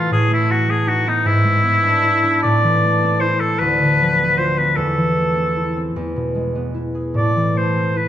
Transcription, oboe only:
0, 0, Header, 1, 2, 480
1, 0, Start_track
1, 0, Key_signature, 0, "minor"
1, 0, Tempo, 758534
1, 77, Time_signature, 6, 3, 24, 8
1, 1037, Tempo, 780234
1, 3437, Tempo, 803213
1, 4957, End_track
2, 0, Start_track
2, 0, Title_t, "Oboe"
2, 0, Program_c, 0, 68
2, 0, Note_on_c, 0, 65, 61
2, 75, Note_off_c, 0, 65, 0
2, 79, Note_on_c, 0, 68, 72
2, 195, Note_off_c, 0, 68, 0
2, 209, Note_on_c, 0, 64, 67
2, 319, Note_on_c, 0, 66, 64
2, 329, Note_off_c, 0, 64, 0
2, 443, Note_on_c, 0, 68, 68
2, 453, Note_off_c, 0, 66, 0
2, 559, Note_on_c, 0, 66, 70
2, 568, Note_off_c, 0, 68, 0
2, 683, Note_on_c, 0, 63, 71
2, 692, Note_off_c, 0, 66, 0
2, 795, Note_on_c, 0, 64, 86
2, 805, Note_off_c, 0, 63, 0
2, 1517, Note_off_c, 0, 64, 0
2, 1521, Note_on_c, 0, 74, 77
2, 1997, Note_on_c, 0, 72, 63
2, 2006, Note_off_c, 0, 74, 0
2, 2120, Note_on_c, 0, 69, 66
2, 2130, Note_off_c, 0, 72, 0
2, 2236, Note_on_c, 0, 71, 76
2, 2246, Note_off_c, 0, 69, 0
2, 2719, Note_on_c, 0, 72, 63
2, 2728, Note_off_c, 0, 71, 0
2, 2844, Note_on_c, 0, 71, 55
2, 2853, Note_off_c, 0, 72, 0
2, 2961, Note_on_c, 0, 69, 54
2, 2970, Note_off_c, 0, 71, 0
2, 3676, Note_off_c, 0, 69, 0
2, 4410, Note_on_c, 0, 74, 64
2, 4649, Note_on_c, 0, 72, 50
2, 4658, Note_off_c, 0, 74, 0
2, 4886, Note_on_c, 0, 71, 53
2, 4895, Note_off_c, 0, 72, 0
2, 4957, Note_off_c, 0, 71, 0
2, 4957, End_track
0, 0, End_of_file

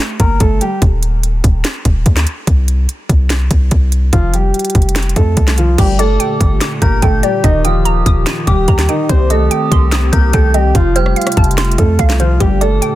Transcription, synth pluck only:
0, 0, Header, 1, 2, 480
1, 0, Start_track
1, 0, Key_signature, -2, "minor"
1, 0, Tempo, 413793
1, 950, Time_signature, 4, 2, 24, 8
1, 15023, End_track
2, 0, Start_track
2, 0, Title_t, "Synth pluck"
2, 0, Program_c, 0, 84
2, 6709, Note_on_c, 0, 67, 102
2, 6949, Note_on_c, 0, 74, 83
2, 7189, Note_on_c, 0, 79, 88
2, 7669, Note_on_c, 0, 86, 92
2, 7909, Note_off_c, 0, 67, 0
2, 8135, Note_off_c, 0, 79, 0
2, 8149, Note_off_c, 0, 74, 0
2, 8149, Note_on_c, 0, 79, 91
2, 8388, Note_on_c, 0, 74, 88
2, 8628, Note_on_c, 0, 75, 98
2, 8629, Note_off_c, 0, 74, 0
2, 8629, Note_off_c, 0, 79, 0
2, 8629, Note_off_c, 0, 86, 0
2, 8869, Note_on_c, 0, 79, 85
2, 9109, Note_on_c, 0, 82, 92
2, 9349, Note_on_c, 0, 87, 90
2, 9589, Note_on_c, 0, 99, 94
2, 9829, Note_off_c, 0, 75, 0
2, 10056, Note_off_c, 0, 82, 0
2, 10069, Note_off_c, 0, 79, 0
2, 10070, Note_on_c, 0, 82, 90
2, 10310, Note_on_c, 0, 79, 85
2, 10549, Note_off_c, 0, 87, 0
2, 10549, Note_off_c, 0, 99, 0
2, 10550, Note_off_c, 0, 79, 0
2, 10550, Note_off_c, 0, 82, 0
2, 10550, Note_on_c, 0, 72, 99
2, 10790, Note_on_c, 0, 75, 82
2, 11030, Note_on_c, 0, 79, 99
2, 11270, Note_on_c, 0, 84, 85
2, 11510, Note_on_c, 0, 87, 96
2, 11750, Note_off_c, 0, 72, 0
2, 11975, Note_off_c, 0, 79, 0
2, 11989, Note_on_c, 0, 79, 88
2, 11990, Note_off_c, 0, 75, 0
2, 12230, Note_on_c, 0, 75, 76
2, 12469, Note_off_c, 0, 79, 0
2, 12469, Note_on_c, 0, 65, 97
2, 12470, Note_off_c, 0, 75, 0
2, 12470, Note_off_c, 0, 84, 0
2, 12470, Note_off_c, 0, 87, 0
2, 12710, Note_on_c, 0, 72, 80
2, 12949, Note_on_c, 0, 77, 88
2, 13189, Note_on_c, 0, 81, 88
2, 13429, Note_on_c, 0, 84, 104
2, 13669, Note_off_c, 0, 65, 0
2, 13896, Note_off_c, 0, 77, 0
2, 13910, Note_off_c, 0, 72, 0
2, 13910, Note_on_c, 0, 77, 92
2, 14149, Note_on_c, 0, 72, 77
2, 14389, Note_off_c, 0, 72, 0
2, 14389, Note_off_c, 0, 81, 0
2, 14389, Note_off_c, 0, 84, 0
2, 14389, Note_on_c, 0, 67, 101
2, 14390, Note_off_c, 0, 77, 0
2, 14629, Note_on_c, 0, 74, 86
2, 14869, Note_on_c, 0, 79, 92
2, 15023, Note_off_c, 0, 67, 0
2, 15023, Note_off_c, 0, 74, 0
2, 15023, Note_off_c, 0, 79, 0
2, 15023, End_track
0, 0, End_of_file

